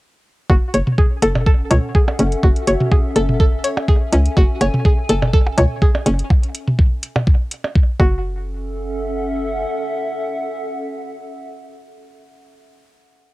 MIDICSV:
0, 0, Header, 1, 7, 480
1, 0, Start_track
1, 0, Key_signature, 3, "minor"
1, 0, Tempo, 483871
1, 493, Time_signature, 4, 2, 24, 8
1, 13231, End_track
2, 0, Start_track
2, 0, Title_t, "Ambient pad"
2, 0, Program_c, 0, 92
2, 492, Note_on_c, 0, 61, 83
2, 606, Note_on_c, 0, 69, 80
2, 1141, Note_on_c, 0, 78, 72
2, 1480, Note_on_c, 0, 76, 67
2, 3455, Note_on_c, 0, 80, 68
2, 3595, Note_off_c, 0, 78, 0
2, 6252, Note_off_c, 0, 61, 0
2, 6252, Note_off_c, 0, 69, 0
2, 6252, Note_off_c, 0, 80, 0
2, 6253, Note_off_c, 0, 76, 0
2, 7934, Note_on_c, 0, 61, 79
2, 8010, Note_on_c, 0, 69, 80
2, 8324, Note_on_c, 0, 76, 78
2, 8391, Note_on_c, 0, 78, 82
2, 11889, Note_off_c, 0, 61, 0
2, 11966, Note_off_c, 0, 69, 0
2, 12280, Note_off_c, 0, 76, 0
2, 12347, Note_off_c, 0, 78, 0
2, 13231, End_track
3, 0, Start_track
3, 0, Title_t, "Synth pluck"
3, 0, Program_c, 1, 84
3, 492, Note_on_c, 1, 66, 99
3, 541, Note_off_c, 1, 66, 0
3, 732, Note_on_c, 1, 73, 76
3, 762, Note_off_c, 1, 73, 0
3, 972, Note_on_c, 1, 68, 79
3, 1045, Note_off_c, 1, 68, 0
3, 1212, Note_on_c, 1, 69, 97
3, 1241, Note_off_c, 1, 69, 0
3, 1451, Note_on_c, 1, 69, 102
3, 1501, Note_off_c, 1, 69, 0
3, 1693, Note_on_c, 1, 73, 72
3, 1722, Note_off_c, 1, 73, 0
3, 1933, Note_on_c, 1, 68, 78
3, 2006, Note_off_c, 1, 68, 0
3, 2172, Note_on_c, 1, 61, 74
3, 2202, Note_off_c, 1, 61, 0
3, 2412, Note_on_c, 1, 66, 95
3, 2461, Note_off_c, 1, 66, 0
3, 2653, Note_on_c, 1, 73, 77
3, 2682, Note_off_c, 1, 73, 0
3, 2892, Note_on_c, 1, 68, 80
3, 2966, Note_off_c, 1, 68, 0
3, 3133, Note_on_c, 1, 69, 97
3, 3162, Note_off_c, 1, 69, 0
3, 3373, Note_on_c, 1, 69, 99
3, 3421, Note_off_c, 1, 69, 0
3, 3612, Note_on_c, 1, 73, 73
3, 3641, Note_off_c, 1, 73, 0
3, 3853, Note_on_c, 1, 68, 77
3, 3926, Note_off_c, 1, 68, 0
3, 4093, Note_on_c, 1, 61, 74
3, 4122, Note_off_c, 1, 61, 0
3, 4333, Note_on_c, 1, 66, 99
3, 4381, Note_off_c, 1, 66, 0
3, 4572, Note_on_c, 1, 73, 75
3, 4602, Note_off_c, 1, 73, 0
3, 4813, Note_on_c, 1, 68, 84
3, 4886, Note_off_c, 1, 68, 0
3, 5053, Note_on_c, 1, 69, 100
3, 5082, Note_off_c, 1, 69, 0
3, 5292, Note_on_c, 1, 69, 105
3, 5341, Note_off_c, 1, 69, 0
3, 5533, Note_on_c, 1, 73, 77
3, 5562, Note_off_c, 1, 73, 0
3, 5772, Note_on_c, 1, 68, 82
3, 5846, Note_off_c, 1, 68, 0
3, 6012, Note_on_c, 1, 61, 76
3, 6042, Note_off_c, 1, 61, 0
3, 7933, Note_on_c, 1, 66, 92
3, 8379, Note_off_c, 1, 66, 0
3, 13231, End_track
4, 0, Start_track
4, 0, Title_t, "Soft synth lead"
4, 0, Program_c, 2, 80
4, 2652, Note_on_c, 2, 66, 86
4, 2735, Note_off_c, 2, 66, 0
4, 2781, Note_on_c, 2, 66, 77
4, 2852, Note_off_c, 2, 66, 0
4, 13231, End_track
5, 0, Start_track
5, 0, Title_t, "FM bass"
5, 0, Program_c, 3, 39
5, 492, Note_on_c, 3, 30, 94
5, 574, Note_off_c, 3, 30, 0
5, 733, Note_on_c, 3, 30, 77
5, 815, Note_off_c, 3, 30, 0
5, 1213, Note_on_c, 3, 30, 78
5, 1628, Note_off_c, 3, 30, 0
5, 1693, Note_on_c, 3, 37, 97
5, 1774, Note_off_c, 3, 37, 0
5, 2173, Note_on_c, 3, 30, 91
5, 2331, Note_off_c, 3, 30, 0
5, 2412, Note_on_c, 3, 30, 98
5, 2494, Note_off_c, 3, 30, 0
5, 2653, Note_on_c, 3, 30, 76
5, 2734, Note_off_c, 3, 30, 0
5, 3133, Note_on_c, 3, 30, 80
5, 3548, Note_off_c, 3, 30, 0
5, 4092, Note_on_c, 3, 37, 82
5, 4251, Note_off_c, 3, 37, 0
5, 4332, Note_on_c, 3, 30, 100
5, 4414, Note_off_c, 3, 30, 0
5, 4573, Note_on_c, 3, 30, 80
5, 4655, Note_off_c, 3, 30, 0
5, 5053, Note_on_c, 3, 30, 82
5, 5468, Note_off_c, 3, 30, 0
5, 5533, Note_on_c, 3, 37, 97
5, 5614, Note_off_c, 3, 37, 0
5, 6013, Note_on_c, 3, 30, 91
5, 6171, Note_off_c, 3, 30, 0
5, 7933, Note_on_c, 3, 30, 98
5, 9573, Note_off_c, 3, 30, 0
5, 13231, End_track
6, 0, Start_track
6, 0, Title_t, "Percussion blips"
6, 1213, Note_on_c, 9, 76, 61
6, 1312, Note_off_c, 9, 76, 0
6, 1342, Note_on_c, 9, 77, 66
6, 1441, Note_off_c, 9, 77, 0
6, 2062, Note_on_c, 9, 76, 60
6, 2062, Note_on_c, 9, 77, 64
6, 2161, Note_off_c, 9, 76, 0
6, 2161, Note_off_c, 9, 77, 0
6, 2893, Note_on_c, 9, 76, 60
6, 2992, Note_off_c, 9, 76, 0
6, 3742, Note_on_c, 9, 76, 62
6, 3742, Note_on_c, 9, 77, 54
6, 3841, Note_off_c, 9, 76, 0
6, 3841, Note_off_c, 9, 77, 0
6, 4573, Note_on_c, 9, 76, 59
6, 4672, Note_off_c, 9, 76, 0
6, 5182, Note_on_c, 9, 77, 72
6, 5281, Note_off_c, 9, 77, 0
6, 5423, Note_on_c, 9, 76, 62
6, 5522, Note_off_c, 9, 76, 0
6, 5902, Note_on_c, 9, 77, 71
6, 6001, Note_off_c, 9, 77, 0
6, 6253, Note_on_c, 9, 76, 63
6, 6352, Note_off_c, 9, 76, 0
6, 7101, Note_on_c, 9, 76, 61
6, 7101, Note_on_c, 9, 77, 69
6, 7200, Note_off_c, 9, 76, 0
6, 7200, Note_off_c, 9, 77, 0
6, 7582, Note_on_c, 9, 77, 54
6, 7681, Note_off_c, 9, 77, 0
6, 7933, Note_on_c, 9, 76, 66
6, 8033, Note_off_c, 9, 76, 0
6, 13231, End_track
7, 0, Start_track
7, 0, Title_t, "Drums"
7, 492, Note_on_c, 9, 36, 117
7, 592, Note_off_c, 9, 36, 0
7, 733, Note_on_c, 9, 42, 84
7, 832, Note_off_c, 9, 42, 0
7, 862, Note_on_c, 9, 47, 86
7, 961, Note_off_c, 9, 47, 0
7, 972, Note_on_c, 9, 36, 114
7, 1072, Note_off_c, 9, 36, 0
7, 1213, Note_on_c, 9, 42, 89
7, 1312, Note_off_c, 9, 42, 0
7, 1342, Note_on_c, 9, 47, 76
7, 1441, Note_off_c, 9, 47, 0
7, 1452, Note_on_c, 9, 36, 113
7, 1551, Note_off_c, 9, 36, 0
7, 1692, Note_on_c, 9, 47, 94
7, 1693, Note_on_c, 9, 42, 89
7, 1792, Note_off_c, 9, 42, 0
7, 1792, Note_off_c, 9, 47, 0
7, 1932, Note_on_c, 9, 36, 117
7, 2031, Note_off_c, 9, 36, 0
7, 2172, Note_on_c, 9, 42, 86
7, 2272, Note_off_c, 9, 42, 0
7, 2301, Note_on_c, 9, 42, 36
7, 2400, Note_off_c, 9, 42, 0
7, 2412, Note_on_c, 9, 36, 123
7, 2511, Note_off_c, 9, 36, 0
7, 2541, Note_on_c, 9, 42, 38
7, 2640, Note_off_c, 9, 42, 0
7, 2652, Note_on_c, 9, 42, 89
7, 2751, Note_off_c, 9, 42, 0
7, 2781, Note_on_c, 9, 47, 91
7, 2881, Note_off_c, 9, 47, 0
7, 2892, Note_on_c, 9, 36, 126
7, 2991, Note_off_c, 9, 36, 0
7, 3132, Note_on_c, 9, 42, 87
7, 3232, Note_off_c, 9, 42, 0
7, 3262, Note_on_c, 9, 47, 79
7, 3361, Note_off_c, 9, 47, 0
7, 3372, Note_on_c, 9, 36, 121
7, 3472, Note_off_c, 9, 36, 0
7, 3612, Note_on_c, 9, 42, 91
7, 3712, Note_off_c, 9, 42, 0
7, 3852, Note_on_c, 9, 36, 124
7, 3952, Note_off_c, 9, 36, 0
7, 4092, Note_on_c, 9, 42, 97
7, 4191, Note_off_c, 9, 42, 0
7, 4221, Note_on_c, 9, 42, 37
7, 4321, Note_off_c, 9, 42, 0
7, 4332, Note_on_c, 9, 36, 123
7, 4432, Note_off_c, 9, 36, 0
7, 4573, Note_on_c, 9, 42, 86
7, 4672, Note_off_c, 9, 42, 0
7, 4701, Note_on_c, 9, 47, 91
7, 4800, Note_off_c, 9, 47, 0
7, 4812, Note_on_c, 9, 36, 126
7, 4912, Note_off_c, 9, 36, 0
7, 5053, Note_on_c, 9, 42, 93
7, 5152, Note_off_c, 9, 42, 0
7, 5182, Note_on_c, 9, 47, 75
7, 5281, Note_off_c, 9, 47, 0
7, 5293, Note_on_c, 9, 36, 123
7, 5392, Note_off_c, 9, 36, 0
7, 5533, Note_on_c, 9, 42, 94
7, 5533, Note_on_c, 9, 47, 98
7, 5632, Note_off_c, 9, 42, 0
7, 5632, Note_off_c, 9, 47, 0
7, 5773, Note_on_c, 9, 36, 127
7, 5872, Note_off_c, 9, 36, 0
7, 6013, Note_on_c, 9, 42, 94
7, 6112, Note_off_c, 9, 42, 0
7, 6142, Note_on_c, 9, 42, 39
7, 6241, Note_off_c, 9, 42, 0
7, 6253, Note_on_c, 9, 36, 126
7, 6352, Note_off_c, 9, 36, 0
7, 6382, Note_on_c, 9, 42, 39
7, 6481, Note_off_c, 9, 42, 0
7, 6493, Note_on_c, 9, 42, 90
7, 6592, Note_off_c, 9, 42, 0
7, 6621, Note_on_c, 9, 47, 92
7, 6721, Note_off_c, 9, 47, 0
7, 6733, Note_on_c, 9, 36, 122
7, 6832, Note_off_c, 9, 36, 0
7, 6973, Note_on_c, 9, 42, 95
7, 7072, Note_off_c, 9, 42, 0
7, 7101, Note_on_c, 9, 47, 77
7, 7200, Note_off_c, 9, 47, 0
7, 7213, Note_on_c, 9, 36, 122
7, 7312, Note_off_c, 9, 36, 0
7, 7453, Note_on_c, 9, 42, 93
7, 7552, Note_off_c, 9, 42, 0
7, 7693, Note_on_c, 9, 36, 127
7, 7792, Note_off_c, 9, 36, 0
7, 7933, Note_on_c, 9, 36, 113
7, 8032, Note_off_c, 9, 36, 0
7, 13231, End_track
0, 0, End_of_file